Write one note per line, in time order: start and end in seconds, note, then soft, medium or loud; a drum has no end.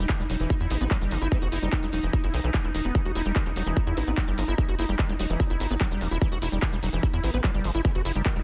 0.00 8.43 D#4 medium
0.09 0.19 D#3 medium
0.09 kick loud
0.09 clap loud
0.09 closed hi-hat medium
0.09 cabasa medium
0.19 0.26 E1 medium
0.19 0.23 G3 medium
0.19 closed hi-hat soft
0.30 0.36 E1 loud
0.30 0.36 F#3 medium
0.30 open hi-hat loud
0.30 cabasa medium
0.40 0.47 E1 loud
0.40 0.50 E3 medium
0.40 closed hi-hat soft
0.40 cabasa soft
0.50 0.54 E4 medium
0.50 kick loud
0.50 closed hi-hat medium
0.50 cabasa medium
0.60 0.67 E2 medium
0.60 0.70 E4 medium
0.60 closed hi-hat soft
0.70 0.77 A1 loud
0.70 0.77 B3 medium
0.70 0.77 E4 medium
0.70 open hi-hat loud
0.70 cabasa loud
0.81 0.87 A1 medium
0.81 0.85 B3 medium
0.81 0.87 B3 medium
0.81 closed hi-hat soft
0.81 cabasa soft
0.91 0.97 F#3 loud
0.91 kick loud
0.91 clap loud
0.91 closed hi-hat medium
0.91 cabasa medium
1.01 1.08 G1 medium
1.01 1.13 G3 medium
1.01 closed hi-hat soft
1.01 cabasa soft
1.11 1.18 G1 loud
1.11 1.18 E3 medium
1.11 open hi-hat loud
1.11 cabasa loud
1.21 1.28 G1 medium
1.21 1.28 E4 loud
1.21 closed hi-hat soft
1.21 cabasa soft
1.32 1.38 E3 medium
1.32 1.38 B3 medium
1.32 kick loud
1.32 closed hi-hat medium
1.32 cabasa medium
1.42 1.49 F#1 medium
1.42 1.48 B3 medium
1.42 1.49 F#4 medium
1.42 closed hi-hat soft
1.52 1.59 F#1 loud
1.52 1.59 E4 loud
1.52 open hi-hat loud
1.52 cabasa loud
1.62 1.69 F#1 medium
1.62 1.69 G3 medium
1.62 1.93 D#4 loud
1.62 closed hi-hat soft
1.62 cabasa soft
1.73 1.82 D#3 medium
1.73 kick loud
1.73 clap loud
1.73 closed hi-hat medium
1.73 cabasa soft
1.83 1.89 E1 medium
1.83 1.87 G3 medium
1.83 closed hi-hat soft
1.92 2.00 E1 loud
1.92 2.00 F#3 medium
1.92 open hi-hat loud
1.92 cabasa loud
2.03 2.10 E1 loud
2.03 2.13 E3 medium
2.03 closed hi-hat soft
2.03 cabasa soft
2.13 2.17 E4 medium
2.13 kick loud
2.13 closed hi-hat medium
2.13 cabasa medium
2.24 2.30 G1 medium
2.24 2.33 E4 medium
2.24 closed hi-hat soft
2.34 2.40 B1 loud
2.34 2.40 E3 medium
2.34 open hi-hat loud
2.34 cabasa medium
2.43 2.51 B1 medium
2.43 2.51 E3 medium
2.43 cabasa soft
2.54 2.61 E3 medium
2.54 kick loud
2.54 clap loud
2.54 closed hi-hat medium
2.54 cabasa medium
2.64 2.71 E1 medium
2.64 2.68 E4 medium
2.64 closed hi-hat soft
2.64 cabasa soft
2.75 2.81 E1 loud
2.75 2.81 D#3 medium
2.75 open hi-hat loud
2.75 cabasa loud
2.85 2.91 E1 medium
2.85 2.95 B3 medium
2.85 closed hi-hat soft
2.85 cabasa soft
2.95 3.02 E3 medium
2.95 kick loud
2.95 closed hi-hat medium
2.95 cabasa medium
3.05 3.12 E1 medium
3.05 3.12 F#4 medium
3.05 closed hi-hat soft
3.15 3.22 E1 loud
3.15 3.22 E4 loud
3.15 open hi-hat loud
3.15 cabasa medium
3.26 3.32 E1 medium
3.26 3.32 G3 medium
3.26 closed hi-hat soft
3.26 cabasa soft
3.35 3.46 D#3 medium
3.35 kick loud
3.35 clap loud
3.35 closed hi-hat medium
3.35 cabasa soft
3.46 3.53 E1 medium
3.46 3.50 G3 medium
3.46 closed hi-hat soft
3.56 3.63 E1 loud
3.56 3.63 F#3 medium
3.56 open hi-hat loud
3.56 cabasa loud
3.66 3.73 E1 loud
3.66 3.76 E3 medium
3.66 closed hi-hat soft
3.66 cabasa soft
3.77 3.81 E4 medium
3.77 kick loud
3.77 closed hi-hat medium
3.77 cabasa medium
3.87 3.93 E2 medium
3.87 3.97 E4 medium
3.87 closed hi-hat soft
3.97 4.04 A1 loud
3.97 4.04 B3 medium
3.97 4.04 E4 medium
3.97 open hi-hat loud
3.97 cabasa loud
4.07 4.14 A1 medium
4.07 4.14 B3 medium
4.07 4.11 B3 medium
4.07 closed hi-hat soft
4.07 cabasa soft
4.17 4.24 F#3 loud
4.17 kick loud
4.17 clap loud
4.17 closed hi-hat medium
4.17 cabasa medium
4.27 4.34 G1 medium
4.27 4.39 G3 medium
4.27 closed hi-hat soft
4.27 cabasa soft
4.38 4.45 G1 loud
4.38 4.44 E3 medium
4.38 open hi-hat loud
4.38 cabasa medium
4.48 4.55 G1 medium
4.48 4.55 E4 loud
4.48 closed hi-hat soft
4.48 cabasa soft
4.58 4.65 E3 medium
4.58 kick loud
4.58 closed hi-hat medium
4.58 cabasa medium
4.68 4.75 F#1 medium
4.68 4.75 F#4 medium
4.68 closed hi-hat soft
4.79 4.85 F#1 loud
4.79 4.85 E4 loud
4.79 open hi-hat loud
4.79 cabasa loud
4.89 4.96 F#1 medium
4.89 4.95 G3 medium
4.89 closed hi-hat soft
4.89 cabasa soft
4.99 5.09 D#3 medium
4.99 kick loud
4.99 clap loud
4.99 closed hi-hat medium
4.99 cabasa soft
5.09 5.16 E1 medium
5.09 5.13 G3 medium
5.09 closed hi-hat soft
5.19 5.26 E1 loud
5.19 5.26 F#3 medium
5.19 5.77 D#4 loud
5.19 open hi-hat loud
5.19 cabasa medium
5.30 5.36 E1 loud
5.30 5.39 E3 medium
5.30 closed hi-hat soft
5.30 cabasa soft
5.39 5.44 E4 medium
5.39 kick loud
5.39 closed hi-hat medium
5.39 cabasa soft
5.50 5.57 G1 medium
5.50 5.60 E4 medium
5.50 closed hi-hat soft
5.60 5.67 G1 loud
5.60 5.67 E4 medium
5.60 open hi-hat loud
5.60 cabasa medium
5.69 5.77 G1 medium
5.69 5.74 B3 medium
5.69 closed hi-hat soft
5.69 cabasa soft
5.81 5.87 F#3 loud
5.81 kick loud
5.81 clap loud
5.81 closed hi-hat medium
5.81 cabasa soft
5.91 5.98 E1 medium
5.91 6.03 G3 medium
5.91 closed hi-hat soft
5.91 cabasa soft
6.01 6.08 E1 loud
6.01 6.08 E3 medium
6.01 open hi-hat loud
6.01 cabasa loud
6.11 6.18 E1 medium
6.11 6.18 E4 loud
6.11 closed hi-hat soft
6.11 cabasa soft
6.21 6.28 E3 medium
6.21 kick loud
6.21 closed hi-hat medium
6.21 cabasa soft
6.32 6.38 E1 medium
6.32 6.38 F#4 medium
6.32 closed hi-hat soft
6.42 6.49 E1 loud
6.42 6.49 E4 loud
6.42 open hi-hat loud
6.42 cabasa medium
6.52 6.59 E1 medium
6.52 6.59 G3 medium
6.52 closed hi-hat soft
6.52 cabasa soft
6.62 6.72 D#3 medium
6.62 kick loud
6.62 clap loud
6.62 closed hi-hat medium
6.62 cabasa soft
6.73 6.79 E1 medium
6.73 6.76 G3 medium
6.73 closed hi-hat soft
6.82 6.89 E1 loud
6.82 6.89 F#3 medium
6.82 open hi-hat loud
6.82 cabasa medium
6.92 7.00 E1 loud
6.92 7.03 E3 medium
6.92 closed hi-hat soft
6.92 cabasa soft
7.02 7.07 E4 medium
7.02 kick loud
7.02 closed hi-hat medium
7.02 cabasa soft
7.13 7.20 E2 medium
7.13 7.23 E4 medium
7.13 closed hi-hat soft
7.24 7.30 A1 loud
7.24 7.30 B3 medium
7.24 7.30 E4 medium
7.24 open hi-hat loud
7.24 cabasa medium
7.34 7.40 A1 medium
7.34 7.38 B3 medium
7.34 7.40 B3 medium
7.34 closed hi-hat soft
7.34 cabasa soft
7.44 7.51 F#3 loud
7.44 kick loud
7.44 clap loud
7.44 closed hi-hat medium
7.44 cabasa medium
7.54 7.61 G1 medium
7.54 7.66 G3 medium
7.54 closed hi-hat soft
7.54 cabasa soft
7.64 7.71 G1 loud
7.64 7.71 E3 medium
7.64 open hi-hat loud
7.64 cabasa medium
7.74 7.81 G1 medium
7.74 7.81 E4 loud
7.74 closed hi-hat soft
7.74 cabasa soft
7.85 7.91 E3 medium
7.85 7.91 B3 medium
7.85 kick loud
7.85 closed hi-hat medium
7.85 cabasa soft
7.95 8.02 F#1 medium
7.95 8.02 B3 medium
7.95 8.02 F#4 medium
7.95 closed hi-hat soft
8.05 8.12 F#1 loud
8.05 8.12 E4 loud
8.05 open hi-hat loud
8.05 cabasa medium
8.15 8.22 F#1 medium
8.15 8.22 G3 medium
8.15 8.43 D#4 loud
8.15 cabasa soft
8.26 8.35 D#3 medium
8.26 kick loud
8.26 clap loud
8.26 closed hi-hat medium
8.26 cabasa soft
8.36 8.42 E1 medium
8.36 8.40 G3 medium
8.36 closed hi-hat soft
8.36 cabasa soft